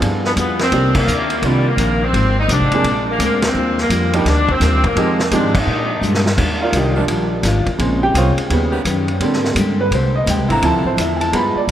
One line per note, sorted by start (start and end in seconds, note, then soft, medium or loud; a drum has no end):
0.00 0.36 G2 medium
0.00 0.34 F3 medium
0.00 0.25 G3 soft
0.00 0.34 B3 medium
0.00 0.26 B3 medium
0.00 0.34 D4 medium
0.00 0.35 F4 medium
0.00 0.26 F4 soft
0.00 0.34 G#4 medium
0.00 0.27 G#4 medium
0.00 ride medium
0.24 0.31 B3 medium
0.24 snare soft
0.36 0.71 F2 medium
0.36 0.60 G3 medium
0.36 0.61 B3 medium
0.36 0.59 B3 medium
0.36 0.61 F4 medium
0.36 0.61 G#4 medium
0.36 hi-hat pedal medium
0.36 ride medium
0.59 0.94 C4 medium
0.59 snare soft
0.59 ride soft
0.72 1.06 C2 medium
0.72 0.96 C3 soft
0.72 0.92 D#3 medium
0.72 0.97 D#3 soft
0.72 0.93 A#3 medium
0.72 0.97 A#3 soft
0.72 0.93 C4 medium
0.72 0.93 D4 medium
0.72 0.97 D4 soft
0.72 0.93 G4 medium
0.72 ride medium
0.95 1.44 A#3 medium
0.95 kick medium
0.95 crash medium
1.07 1.42 D#2 medium
1.07 1.32 C3 medium
1.07 1.32 D#3 medium
1.07 1.32 A#3 medium
1.07 1.32 D4 medium
1.07 hi-hat pedal medium
1.30 ride soft
1.42 1.77 C2 medium
1.42 1.67 C3 soft
1.42 1.63 D#3 medium
1.42 1.67 D#3 soft
1.42 1.67 G3 medium
1.42 1.64 A#3 medium
1.42 1.68 A#3 soft
1.42 1.64 C4 soft
1.42 1.64 D4 medium
1.42 1.68 D4 soft
1.42 1.64 F4 medium
1.42 ride medium
1.68 2.02 A#3 loud
1.77 2.12 A#1 medium
1.77 2.02 C3 medium
1.77 2.02 D#3 medium
1.77 2.03 A#3 medium
1.77 2.03 D4 medium
1.77 hi-hat pedal medium
1.77 ride medium
2.04 2.38 C4 loud
2.13 2.48 G#1 medium
2.13 2.38 F3 soft
2.13 2.38 G#3 soft
2.13 2.39 D#4 soft
2.13 2.39 G4 soft
2.13 ride medium
2.40 2.50 D#4 medium
2.48 2.61 C2 medium
2.48 2.73 F3 medium
2.48 2.73 G#3 medium
2.48 3.05 D4 medium
2.48 2.73 D#4 medium
2.48 2.74 G4 medium
2.48 hi-hat pedal medium
2.48 ride medium
2.60 2.71 G#1 medium
2.72 2.83 F1 medium
2.72 2.83 F3 medium
2.72 2.83 A#3 medium
2.72 2.84 C4 medium
2.72 2.84 D4 medium
2.72 2.84 G#4 medium
2.72 ride medium
2.84 3.18 A#1 medium
2.84 3.08 A#2 soft
2.84 3.09 G#3 soft
2.84 3.09 C4 medium
2.84 3.09 D4 soft
2.84 ride medium
3.11 3.22 A#3 medium
3.19 3.53 D2 medium
3.19 3.43 A#2 medium
3.19 3.44 G#3 medium
3.19 3.44 C4 medium
3.19 3.44 D4 medium
3.19 hi-hat pedal medium
3.19 ride medium
3.23 3.43 A#3 medium
3.42 snare medium
3.42 ride medium
3.47 3.80 C4 medium
3.54 3.89 D#2 medium
3.54 3.79 D#3 soft
3.54 3.79 G3 soft
3.54 3.80 D4 soft
3.54 3.80 F4 medium
3.78 4.13 A#3 medium
3.78 snare soft
3.89 4.24 F2 medium
3.89 4.14 D#3 medium
3.89 4.14 G3 medium
3.89 4.15 D4 medium
3.89 4.15 F4 medium
3.89 hi-hat pedal medium
3.89 ride medium
4.13 4.24 F3 medium
4.13 4.26 G3 medium
4.13 4.24 A#3 medium
4.13 4.25 D4 medium
4.13 4.25 D#4 medium
4.13 4.25 G4 medium
4.13 ride medium
4.24 4.60 D2 medium
4.24 4.49 D#3 soft
4.24 4.49 G3 soft
4.24 4.50 D4 soft
4.24 4.50 F4 medium
4.24 snare soft
4.24 ride medium
4.28 4.50 D4 loud
4.49 4.85 C4 loud
4.49 kick medium
4.60 4.72 D#2 medium
4.60 4.85 D#3 medium
4.60 4.85 G3 medium
4.60 4.86 D4 medium
4.60 4.86 F4 medium
4.60 snare soft
4.60 hi-hat pedal medium
4.60 ride medium
4.72 4.83 D2 medium
4.83 4.95 A#1 medium
4.83 5.20 A#3 medium
4.83 kick medium
4.83 ride soft
4.96 5.30 F2 medium
4.96 5.20 F2 soft
4.96 5.21 D#3 soft
4.96 5.17 F3 medium
4.96 5.17 G#3 medium
4.96 5.21 G#3 soft
4.96 5.17 C4 medium
4.96 5.21 C4 soft
4.96 5.17 D#4 medium
4.96 5.17 G4 medium
4.96 ride medium
5.19 snare medium
5.31 5.55 F2 medium
5.31 5.66 G#2 medium
5.31 5.55 D#3 medium
5.31 5.52 F3 medium
5.31 5.52 G#3 medium
5.31 5.56 G#3 medium
5.31 5.52 C4 medium
5.31 5.56 C4 medium
5.31 5.54 D4 medium
5.31 5.53 D#4 medium
5.31 5.53 G4 medium
5.31 hi-hat pedal soft
5.31 ride medium
5.55 6.04 D#4 medium
5.55 kick medium
5.55 crash medium
5.67 5.91 A#2 soft
5.67 6.01 A#2 medium
5.67 5.91 G#3 soft
5.67 5.92 D4 soft
5.67 5.92 G4 medium
6.01 6.36 G2 medium
6.01 6.26 A#2 medium
6.01 6.27 G#3 medium
6.01 6.27 D4 medium
6.01 6.27 G4 medium
6.01 hi-hat pedal medium
6.14 snare medium
6.26 snare medium
6.37 6.72 D#2 medium
6.37 6.62 D#3 medium
6.37 6.91 D#3 medium
6.37 6.91 G3 medium
6.37 6.62 G3 soft
6.37 6.91 D4 medium
6.37 6.63 D4 medium
6.37 6.91 F4 medium
6.37 6.63 F4 medium
6.37 kick medium
6.37 crash medium
6.62 6.74 F4 medium
6.62 6.73 A#4 medium
6.62 6.74 D5 medium
6.62 6.73 F5 medium
6.72 7.07 C2 medium
6.72 6.97 D#3 medium
6.72 6.97 G3 medium
6.72 6.98 D4 medium
6.72 6.98 F4 medium
6.72 6.97 D#5 medium
6.72 hi-hat pedal soft
6.72 ride medium
6.76 6.97 D#4 medium
6.76 6.97 G4 medium
6.76 6.97 A#4 medium
6.95 7.04 D#3 loud
6.95 7.41 F3 soft
6.95 7.04 G3 medium
6.95 7.42 G3 soft
6.95 7.04 D4 medium
6.95 7.42 D4 medium
6.95 7.04 F4 medium
7.08 7.42 A#1 medium
7.08 7.33 D#3 medium
7.08 7.33 G3 medium
7.08 7.34 D4 medium
7.08 ride medium
7.12 7.34 F4 medium
7.43 7.65 G#1 medium
7.43 7.68 D#3 medium
7.43 7.68 G3 medium
7.43 7.68 D4 medium
7.43 7.69 F4 medium
7.43 snare soft
7.43 hi-hat pedal medium
7.43 ride medium
7.66 muted upright bass stroke soft
7.66 kick soft
7.66 ride soft
7.78 8.13 A#1 medium
7.78 8.46 C#3 soft
7.78 8.46 G#3 soft
7.78 8.03 A#3 soft
7.78 8.47 C4 soft
7.78 8.04 C#4 medium
7.78 8.04 G#4 soft
7.78 8.04 C5 medium
7.78 ride medium
8.03 8.15 G4 medium
8.03 8.15 G5 medium
8.14 8.36 C2 medium
8.14 8.50 C#3 medium
8.14 8.50 A#3 medium
8.14 8.39 A#3 medium
8.14 8.50 C4 medium
8.14 8.39 C#4 medium
8.14 8.30 F4 medium
8.14 8.50 G#4 medium
8.14 8.39 G#4 medium
8.14 8.40 C5 medium
8.14 8.30 C5 medium
8.14 8.31 C#5 medium
8.14 8.30 F5 medium
8.14 hi-hat pedal medium
8.14 ride medium
8.37 muted upright bass stroke soft
8.37 ride soft
8.50 8.84 D#2 medium
8.50 8.76 C#3 soft
8.50 8.74 D#3 medium
8.50 8.77 G3 soft
8.50 8.77 B3 medium
8.50 8.75 C#4 medium
8.50 8.75 G4 medium
8.50 8.75 B4 medium
8.50 ride medium
8.72 8.81 D#3 medium
8.72 8.81 B3 medium
8.72 8.81 C#4 medium
8.72 8.81 G4 medium
8.84 9.19 F#2 medium
8.84 9.09 D#3 medium
8.84 9.09 C#4 medium
8.84 9.10 G4 medium
8.84 9.10 B4 medium
8.84 hi-hat pedal soft
8.84 ride medium
9.08 ride soft
9.20 9.55 G#2 medium
9.20 10.58 D3 soft
9.20 10.59 G3 medium
9.20 9.45 G#3 medium
9.20 10.59 A#3 soft
9.20 9.46 C4 medium
9.20 10.59 C4 medium
9.20 9.46 D4 medium
9.20 9.46 G4 medium
9.20 ride medium
9.33 snare soft
9.44 snare soft
9.55 9.90 G2 medium
9.55 9.80 G#3 medium
9.55 9.81 C4 medium
9.55 9.81 D4 medium
9.55 9.81 G4 medium
9.55 hi-hat pedal medium
9.55 ride medium
9.81 9.92 B4 medium
9.91 10.25 C2 medium
9.91 10.15 G#3 soft
9.91 10.16 C4 soft
9.91 10.16 D4 medium
9.91 10.17 G4 soft
9.91 10.15 C5 medium
9.91 ride medium
10.16 10.27 D#5 medium
10.26 10.38 D#2 medium
10.26 10.51 G#3 medium
10.26 10.51 C4 medium
10.26 10.51 D4 medium
10.26 10.51 G4 medium
10.26 10.50 G5 medium
10.26 hi-hat pedal medium
10.26 ride medium
10.38 10.49 C2 medium
10.49 10.61 G#1 medium
10.49 10.95 D3 loud
10.49 10.95 F3 medium
10.49 10.95 C4 medium
10.49 10.95 E4 loud
10.49 10.62 A#5 medium
10.49 ride soft
10.62 10.74 D2 medium
10.62 10.86 D3 soft
10.62 11.17 F3 medium
10.62 10.87 F3 soft
10.62 11.17 C4 soft
10.62 10.87 C4 soft
10.62 11.18 E4 medium
10.62 10.88 E4 medium
10.62 10.86 A5 medium
10.62 ride medium
10.74 10.84 C2 medium
10.85 10.96 A1 medium
10.85 10.98 C5 medium
10.97 11.31 E2 medium
10.97 11.21 D3 medium
10.97 11.22 F3 medium
10.97 11.22 C4 medium
10.97 11.22 E4 medium
10.97 11.21 E5 medium
10.97 hi-hat pedal medium
10.97 ride medium
11.16 11.18 G#5 medium
11.21 11.33 A5 medium
11.21 ride soft
11.32 11.54 G2 medium
11.32 11.57 G3 soft
11.32 11.59 G#3 soft
11.32 11.60 B3 soft
11.32 11.57 B3 soft
11.32 11.60 F4 soft
11.32 11.58 F4 soft
11.32 11.58 G#4 soft
11.32 11.34 A#5 medium
11.32 11.56 B5 medium
11.32 ride medium
11.55 11.68 D5 medium
11.55 muted upright bass stroke soft
11.68 11.71 D2 medium
11.68 11.71 G3 medium